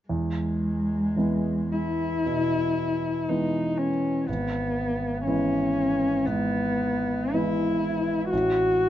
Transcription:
0.09 E2 G#3
1.16 E3 G#3 B3
1.72 E4
2.26 B2
3.29 E3 G#3 B3 D#4
3.77 C#4
4.27 G#1 B3
5.26 E3 G#3 B3 C#4
6.26 G#2 B3
7.33 E3 G#3 B3 E4
8.30 A1 F#4

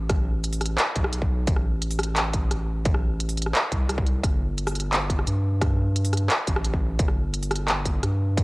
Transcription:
Already playing: A1
0.09 kick, cross-stick, closed hi-hat
0.44 closed hi-hat
0.53 open hi-hat
0.61 cross-stick, closed hi-hat
0.66 closed hi-hat
0.78 clap, closed hi-hat
0.96 B1, kick, closed hi-hat
1.04 cross-stick
1.13 closed hi-hat
1.22 kick
1.47 A1, kick, closed hi-hat
1.56 cross-stick
1.82 closed hi-hat
1.91 open hi-hat
1.99 cross-stick, closed hi-hat
2.03 closed hi-hat
2.16 clap, closed hi-hat
2.34 kick, closed hi-hat
2.51 A1, cross-stick, closed hi-hat
2.85 kick, closed hi-hat
2.94 cross-stick
3.20 closed hi-hat
3.29 open hi-hat
3.37 closed hi-hat
3.42 closed hi-hat
3.46 cross-stick
3.55 clap, closed hi-hat
3.72 C2, kick, closed hi-hat
3.89 cross-stick, closed hi-hat
3.98 kick
4.07 closed hi-hat
4.24 G1, kick, cross-stick, closed hi-hat
4.58 closed hi-hat
4.67 cross-stick, open hi-hat
4.75 closed hi-hat
4.80 closed hi-hat
4.93 clap, closed hi-hat
5.10 kick, closed hi-hat
5.19 cross-stick
5.27 G2, closed hi-hat
5.61 kick, cross-stick, closed hi-hat
5.96 closed hi-hat
6.05 open hi-hat
6.13 cross-stick, closed hi-hat
6.17 closed hi-hat
6.30 clap, closed hi-hat
6.47 A1, kick, closed hi-hat
6.56 cross-stick
6.64 closed hi-hat
6.74 kick
6.99 G1, kick, closed hi-hat
7.08 cross-stick
7.34 closed hi-hat
7.43 open hi-hat
7.51 cross-stick, closed hi-hat
7.56 closed hi-hat
7.68 clap, closed hi-hat
7.85 kick, closed hi-hat
8.03 G2, cross-stick, closed hi-hat
8.37 kick, closed hi-hat

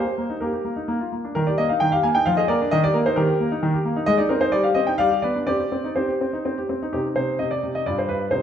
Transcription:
Already playing: C5
0.05 G4
0.18 A#3
0.30 D#4
0.41 A#3 G4 A#4
0.53 G4
0.65 A#3
0.76 D#4
0.88 A#3
1.00 F4
1.12 A#3
1.24 D4
1.35 D#3 A#4
1.47 G4 D5
1.58 A#3 D#5
1.69 D#4 F5
1.80 D#3 G5
1.92 G4 F5
2.03 A#3 G#5
2.15 D#4 G5
2.26 F3 F5
2.37 G#4 D#5
2.48 A#3 A#4 D5
2.61 D4
2.71 D#3 D#5
2.84 G4 D5
2.94 A#3 A#4
3.06 D#4 C5
3.16 D#3 G4 A#4
3.29 G4
3.40 A#3
3.51 D#4
3.63 D#3
3.74 G4
3.85 A#3
3.96 D#4
4.06 G#3 D#5
4.18 D#4 D5
4.29 C4 A#4
4.41 D#4 C5
4.52 G3 D5
4.63 G4 F5
4.75 C4 D#5
4.87 D#4 G5
4.98 G3 D5 F5
5.11 G4
5.22 B3 B4 D5
5.36 D4
5.47 C4 G4 D5
5.60 G4
5.72 C4
5.84 D#4
5.96 C4 G4 C5
6.08 G4
6.21 C4
6.33 D#4
6.45 C4
6.58 G4
6.69 C4
6.82 D#4
6.93 C3 C4 D#4 G4
7.16 C3 C5
7.39 C3 D#5
7.51 D5
7.64 C3
7.75 D#5
7.86 G2 D4 F4 D5
7.99 C5
8.09 G2 B4
8.31 C3 C4 D#4 C5

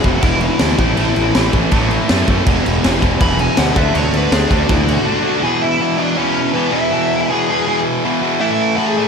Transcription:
0.04 E1 E2 B2 E3 F#4, kick, crash
0.20 E1 E2 B2 E3 E4, kick, crash
0.41 E4, crash
0.59 D2 E2 B2 E3, snare, crash
0.78 A1 A2 E3 A3, kick, crash
0.97 A1 A2 E3 A3, crash
1.16 A1, crash
1.35 A1 A2 E3 A3, snare, crash
1.53 A1 A2 E3 A3, kick, crash
1.71 A1 A2 E3 A3, kick, crash
1.91 crash
2.08 F#2 A2 E3 A3, snare, crash
2.27 F#2 A2 E3 A3, kick, crash
2.46 E1 E2 B2 E3, kick, crash
2.66 E1, crash
2.84 E1 E2 B2 E3, snare, crash
3.02 E1 E2 B2 E3, kick, crash
3.21 E1 E2 B2 E3 B5, kick, crash
3.39 G#5, crash
3.57 D2 E2 B2 E3 F#5, snare, crash
3.75 D2 D3 A3 D4 E5, kick, crash
3.94 D2 D3 A3 D4 C#5, crash
4.13 D2 B4, crash
4.31 D2 D3 A3 D4 G#4, snare, crash
4.49 D2 D3 A3 D4 F#4, kick, crash
4.68 D2 D3 A3 D4 E4, kick, crash
4.88 F#4, crash
5.05 D3 A3 D4
5.23 D3 A3 D4
5.42 E2 B2 E3 G#4 G#5
5.62 E4 E5
5.79 E2 B2 E3
5.97 E2 B2 E3 D4 D5
6.17 E2 B2 E3 C#4 C#5
6.53 E2 B2 E3 B3 B4
6.71 E2 B2 E3 E4 E5
6.92 E2 B2 E3
7.28 E2 B2 E3 G#4 G#5
7.49 E2 B2 E3
7.67 E2 B2 E3
8.04 E2 B2 E3
8.22 E2 B2 E3
8.40 A2 E3 A3 E4 E5
8.51 E4 E5
8.77 A2 E3 A3 F#4 F#5
8.86 G#4 G#5
8.97 A2 E3 A3

